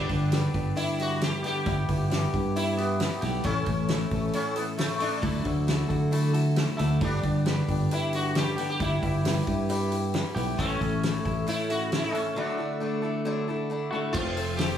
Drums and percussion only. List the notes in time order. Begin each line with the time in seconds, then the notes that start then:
0.09 kick, open hi-hat
0.32 snare, open hi-hat
0.54 kick, open hi-hat
0.77 open hi-hat
1.00 open hi-hat
1.21 snare, open hi-hat
1.44 open hi-hat
1.66 kick, open hi-hat
1.89 kick, open hi-hat
2.11 snare, open hi-hat
2.34 kick, open hi-hat
2.56 open hi-hat
2.78 open hi-hat
3.00 snare, open hi-hat
3.22 open hi-hat
3.44 kick, open hi-hat
3.66 kick, open hi-hat
3.88 snare, open hi-hat
4.11 kick, open hi-hat
4.33 open hi-hat
4.56 open hi-hat
4.78 snare, open hi-hat
5.00 open hi-hat
5.23 kick, open hi-hat
5.45 kick, open hi-hat
5.68 snare, open hi-hat
5.90 kick, open hi-hat
6.12 open hi-hat
6.34 open hi-hat
6.56 snare, open hi-hat
6.79 open hi-hat
7.01 kick, open hi-hat
7.23 kick, open hi-hat
7.46 snare, open hi-hat
7.69 kick, open hi-hat
7.91 open hi-hat
8.13 open hi-hat
8.35 snare, open hi-hat
8.58 open hi-hat
8.80 kick, open hi-hat
9.03 kick, open hi-hat
9.25 snare, open hi-hat
9.47 kick, open hi-hat
9.70 open hi-hat
9.92 open hi-hat
10.14 snare, open hi-hat
10.37 open hi-hat
10.59 kick, open hi-hat
10.81 kick, open hi-hat
11.03 snare, open hi-hat
11.25 kick, open hi-hat
11.47 open hi-hat
11.70 open hi-hat
11.92 snare, open hi-hat
12.15 open hi-hat
14.15 kick, crash
14.37 open hi-hat
14.59 snare, open hi-hat